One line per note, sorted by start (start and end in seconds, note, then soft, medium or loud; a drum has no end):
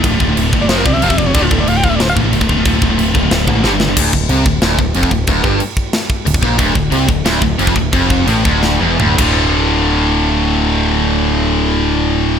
0.00 0.12 D2 medium
0.00 0.68 D3 loud
0.00 0.17 F4 medium
0.00 kick loud
0.04 0.19 D1 loud
0.04 0.11 A2 medium
0.04 0.69 A3 loud
0.04 1.36 F4 loud
0.04 crash medium
0.12 0.20 D2 medium
0.12 0.19 A2 medium
0.20 0.35 D1 medium
0.20 0.27 D2 medium
0.20 0.27 A2 medium
0.20 kick medium
0.29 0.36 D2 medium
0.29 0.36 A2 medium
0.37 0.52 D1 loud
0.37 0.52 D2 medium
0.37 0.52 A2 medium
0.37 crash medium
0.53 0.68 G1 medium
0.53 0.61 D2 medium
0.53 0.61 A2 medium
0.53 kick medium
0.61 0.69 D2 medium
0.61 0.70 A2 medium
0.61 0.70 D5 medium
0.68 0.84 F1 loud
0.68 0.85 F2 medium
0.68 0.85 C3 loud
0.68 0.86 F3 loud
0.68 0.79 C5 medium
0.68 snare loud
0.68 crash medium
0.77 0.87 A#4 medium
0.85 1.01 C2 loud
0.85 0.93 F2 medium
0.85 0.93 C3 medium
0.85 0.95 D5 loud
0.85 kick medium
0.93 1.00 F2 medium
0.93 1.01 C3 medium
0.93 1.04 E5 loud
1.02 1.32 F1 medium
1.02 1.09 F2 medium
1.02 1.09 C3 medium
1.02 1.10 F3 loud
1.02 1.11 F5 loud
1.02 crash medium
1.09 1.17 F2 medium
1.09 1.17 C3 medium
1.09 1.19 E5 medium
1.09 kick medium
1.18 1.25 F2 medium
1.18 1.25 C3 medium
1.18 1.28 D5 loud
1.18 kick medium
1.26 1.33 F2 medium
1.26 1.34 C3 medium
1.26 1.36 C#5 medium
1.34 1.50 D1 loud
1.34 1.42 D2 medium
1.34 1.41 A2 loud
1.34 1.42 D3 loud
1.34 2.48 A3 loud
1.34 2.47 F4 loud
1.34 1.45 D5 loud
1.34 kick loud
1.34 crash medium
1.42 1.50 D2 medium
1.42 1.50 A2 medium
1.42 1.53 F4 medium
1.51 1.66 D1 medium
1.51 1.57 D2 medium
1.51 1.57 A2 medium
1.51 1.62 A4 medium
1.51 kick medium
1.58 1.66 D2 medium
1.58 1.66 A2 medium
1.58 1.70 D5 medium
1.67 1.82 D1 loud
1.67 1.82 D2 medium
1.67 1.82 A2 loud
1.67 1.78 F5 medium
1.67 crash medium
1.77 1.86 G5 loud
1.83 1.99 D1 medium
1.83 1.90 D2 medium
1.83 1.90 A2 medium
1.83 1.91 F5 loud
1.83 kick medium
1.90 1.98 D2 medium
1.90 1.99 A2 medium
1.90 1.97 E5 loud
1.96 2.15 D2 medium
1.96 2.03 D5 medium
2.00 2.15 D1 medium
2.00 2.14 A2 medium
2.00 2.09 C5 medium
2.00 snare loud
2.00 crash medium
2.09 2.14 F5 loud
2.16 2.32 A1 loud
2.16 2.23 D2 medium
2.16 2.23 A2 medium
2.16 kick medium
2.24 2.31 D2 medium
2.24 2.32 A2 medium
2.32 2.62 D1 medium
2.32 2.40 D2 medium
2.32 2.39 A2 medium
2.32 crash medium
2.41 2.49 D2 medium
2.41 2.49 A2 medium
2.41 kick loud
2.48 2.57 D2 medium
2.48 2.56 A2 medium
2.48 2.65 D3 medium
2.48 2.65 A3 medium
2.48 2.64 F4 loud
2.48 kick medium
2.58 2.64 D2 medium
2.58 2.64 A2 medium
2.65 2.81 D1 loud
2.65 2.73 D2 medium
2.65 2.72 A2 medium
2.65 3.64 D3 loud
2.65 3.64 A3 loud
2.65 3.64 F4 loud
2.65 kick loud
2.65 crash medium
2.74 2.81 D2 medium
2.74 2.80 A2 medium
2.82 2.97 D1 medium
2.82 2.89 D2 medium
2.82 2.89 A2 medium
2.82 kick medium
2.90 2.96 D2 medium
2.90 2.97 A2 medium
2.98 3.13 D1 loud
2.98 3.13 D2 medium
2.98 3.13 A2 loud
2.98 crash medium
3.14 3.30 D1 loud
3.14 3.22 D2 medium
3.14 3.21 A2 medium
3.14 kick medium
3.23 3.30 D2 medium
3.23 3.30 A2 medium
3.30 3.46 D1 medium
3.30 3.46 D2 medium
3.30 3.46 A2 medium
3.30 snare loud
3.30 crash medium
3.47 3.63 A1 loud
3.47 3.54 D2 medium
3.47 3.54 A2 medium
3.47 kick medium
3.55 3.63 D2 medium
3.55 3.63 A2 medium
3.63 3.94 G1 medium
3.63 3.71 G2 loud
3.63 3.71 D3 medium
3.63 3.72 G3 loud
3.63 snare medium
3.72 3.80 G2 medium
3.72 3.79 D3 medium
3.80 3.88 G2 medium
3.80 3.87 D3 loud
3.80 snare medium
3.89 3.96 G2 medium
3.89 3.97 D3 medium
3.97 4.12 D1 loud
3.97 4.12 D2 loud
3.97 kick loud
3.97 crash loud
3.97 crash medium
4.13 4.28 D1 medium
4.13 4.26 D2 medium
4.13 kick medium
4.29 4.44 C2 loud
4.29 4.45 C3 loud
4.29 crash medium
4.46 4.61 D1 medium
4.46 4.59 D2 medium
4.46 kick medium
4.62 4.77 D1 loud
4.62 4.78 D2 loud
4.62 snare loud
4.62 crash medium
4.79 4.94 D1 medium
4.79 4.92 D2 medium
4.79 kick medium
4.94 5.10 F1 medium
4.94 5.11 F2 loud
4.94 crash medium
5.03 kick medium
5.11 5.27 D1 medium
5.11 5.25 D2 medium
5.11 kick medium
5.27 5.43 D1 loud
5.27 5.44 D2 loud
5.27 kick loud
5.27 crash medium
5.44 5.59 G1 loud
5.44 5.60 G2 loud
5.44 kick medium
5.60 crash medium
5.77 kick medium
5.93 snare loud
5.93 crash medium
6.10 kick medium
6.26 6.41 D1 medium
6.26 6.39 D2 medium
6.26 crash medium
6.34 kick medium
6.41 6.58 A#1 medium
6.41 6.58 A#2 loud
6.41 kick medium
6.58 6.74 D1 loud
6.58 6.74 D2 loud
6.58 kick loud
6.58 crash medium
6.75 6.90 D1 medium
6.75 6.88 D2 medium
6.75 kick medium
6.92 7.07 C2 loud
6.92 7.08 C3 loud
6.92 crash medium
7.08 7.24 D1 loud
7.08 7.21 D2 medium
7.08 kick loud
7.25 7.41 D1 loud
7.25 7.41 D2 loud
7.25 snare loud
7.25 crash medium
7.42 7.58 D1 loud
7.42 7.56 D2 medium
7.42 kick medium
7.59 7.74 F1 loud
7.59 7.75 F2 loud
7.59 crash medium
7.67 kick medium
7.76 7.91 D1 medium
7.76 7.89 D2 medium
7.76 kick medium
7.93 8.25 F1 loud
7.93 8.27 F2 loud
7.93 kick loud
7.93 crash medium
8.10 kick medium
8.27 8.44 A1 medium
8.27 8.44 A2 loud
8.27 crash medium
8.45 8.79 D1 loud
8.45 8.80 D2 loud
8.45 kick loud
8.63 snare medium
8.81 8.98 E1 loud
8.81 8.99 E2 loud
8.99 9.17 D1 medium
8.99 9.16 D2 loud
8.99 mid tom loud
9.17 12.39 D1 loud
9.17 12.39 D2 loud
9.17 12.39 A2 loud
9.17 12.39 A3 medium
9.17 12.39 F4 loud
9.17 kick loud
9.17 crash medium
9.21 12.39 D3 loud